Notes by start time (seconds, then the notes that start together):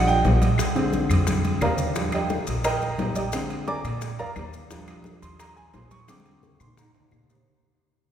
Already playing: A#1 F3 G3 D4
0.07 G5, high bongo, high conga, maracas
0.24 A#1, high bongo, low bongo, high conga, high timbale, low timbale, maracas
0.42 high bongo, high conga, high timbale, maracas
0.58 high bongo, high conga, high timbale, claves, maracas
0.75 D3 G#3 C4, high conga, high timbale, maracas
0.93 high bongo, high conga, low timbale, maracas
1.10 F2, high bongo, high conga, high timbale, claves, maracas
1.27 high bongo, high conga, high timbale, maracas
1.44 high bongo, high conga, high timbale, maracas
1.61 D#2 A#4 D5 F5 A#5, high bongo, low bongo, low conga, high timbale, low timbale, claves, maracas
1.78 high bongo, low conga, maracas
1.95 F3 G3 D4, high bongo, high conga, high timbale, maracas
2.12 G4 D5 D#5 G5, high conga, high timbale, claves, maracas
2.29 high bongo, high conga, low timbale, maracas
2.47 A#1, high bongo, high conga, high timbale, maracas
2.64 A#4 D#5 G5 A#5, high bongo, high conga, high timbale, claves, maracas
2.82 high bongo, high conga, maracas
2.98 A#1, high bongo, low bongo, high conga, high timbale, low timbale, maracas
3.15 G4 D5 D#5 G5, high bongo, high conga, high timbale, maracas
3.32 D3 G#3 C4, high bongo, high conga, high timbale, claves, maracas
3.50 high conga, high timbale, maracas
3.67 D5 G#5 A#5 D6, high bongo, high conga, low timbale, maracas
3.84 A#2, high bongo, high conga, high timbale, claves, maracas
4.01 high bongo, high conga, high timbale, maracas
4.19 F2 A#4 D5 F5 A#5, high bongo, high conga, high timbale, maracas
4.36 D#2, high bongo, low bongo, high conga, high timbale, low timbale, claves, maracas
4.53 high bongo, high conga, maracas
4.70 F3 G3 D4, high bongo, high conga, high timbale, maracas
4.87 high conga, high timbale, claves, maracas
5.04 high bongo, high conga, low timbale, maracas
5.22 D#2 C6, high bongo, high conga, high timbale, maracas
5.39 A#5, high bongo, high conga, high timbale, claves, maracas
5.57 G#5, high bongo, high conga, maracas
5.74 A#1 C6, high bongo, low bongo, high conga, high timbale, low timbale, maracas
5.91 C#6, high bongo, high conga, high timbale, maracas
6.08 D3 G#3 C4 D6, high bongo, high conga, high timbale, claves, maracas
6.20 high conga
6.26 high timbale, maracas
6.31 high conga
6.43 high bongo, low conga, low timbale, maracas
6.60 A#2 C6, high bongo, high timbale, claves, maracas
6.66 low conga
6.77 A#5, high bongo, low conga, high timbale, maracas
6.95 high bongo, high timbale, maracas
7.00 low conga
7.11 A#2, high bongo, low bongo, low conga, low timbale, claves, maracas
7.24 low conga
7.30 high bongo, low timbale, maracas
7.35 low conga